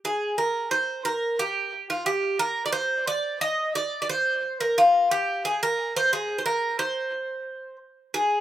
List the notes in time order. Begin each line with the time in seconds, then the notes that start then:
0.05 G#4
0.38 A#4
0.71 C5
1.05 A#4
1.39 G4
1.90 F4
2.06 G4
2.39 A#4
2.66 D5
2.73 C5
3.07 D5
3.41 D#5
3.75 D5
4.02 D5
4.09 C5
4.60 A#4
4.78 F4
5.11 G4
5.45 G#4
5.63 A#4
5.96 C5
6.13 G#4
6.38 C5
6.46 A#4
6.79 C5
8.14 G#4